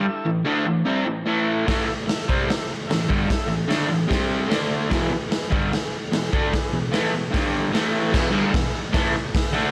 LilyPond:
<<
  \new Staff \with { instrumentName = "Transistor combo organ" } { \time 4/4 \key a \major \tempo 4 = 148 <e' a' e''>8 r8 <e' a' e''>8 r8 <e' a' e''>8 r8 <e' a' e''>8 r8 | <e' a' e''>8 r8 <e' a' e''>8 r8 <e' a' e''>8 r8 <e' a' e''>8 r8 | <e' a' e''>8 r8 <e' a' e''>8 r8 <c' g' c''>8 r8 <d' a' d''>8 r8 | <e' gis' b'>8 r8 <e' gis' b'>8 r8 <e' gis' b'>8 r8 <e' gis' b'>8 r8 |
<e' gis' b'>8 r8 <e' gis' b'>8 r8 <d' g' d''>8 r8 <e' a' e''>8 r8 | <gis' b' e''>8 r8 <gis' b' e''>8 r8 <gis' b' e''>8 r8 <gis' b' e''>8 r8 | }
  \new Staff \with { instrumentName = "Overdriven electric guitar" } { \clef bass \time 4/4 \key a \major r8 <a, e>8 <d a d'>8 <a, e>8 <c g c'>8 <a, e>8 <a, e a>4 | <a, e a>8 r4 <c g c'>8 r4 <a, e>8 <g, d g>8 | r8 <a, e>8 <d a d'>8 <a, e>8 <c g c'>4 <d a d'>4 | <e, b, e>8 r4 <g, d g>8 r4 <e, b,>8 <d a d'>8 |
r8 <e, b,>8 <a, e a>8 <e, b,>8 <g, d g>4 <a, e a>4 | <e, b, e>8 <g, d g>8 <e, b,>8 r8 <a, e a>8 r4 <d a d'>8 | }
  \new DrumStaff \with { instrumentName = "Drums" } \drummode { \time 4/4 r4 r4 r4 r4 | <hho bd sn>4 <hho sn>8 bd8 <hho sn>4 <hho sn>8 bd8 | <hho bd sn>4 <hho sn>4 <hho bd sn>4 <hho sn>4 | <hho bd sn>4 <hho sn>8 bd8 <hho sn>4 <hho sn>8 bd8 |
<hho bd sn>4 <hho sn>4 <hho bd sn>4 <hho sn>4 | <cymc bd sn>4 <hho bd sn>4 <hho bd sn>4 <hho bd sn>4 | }
>>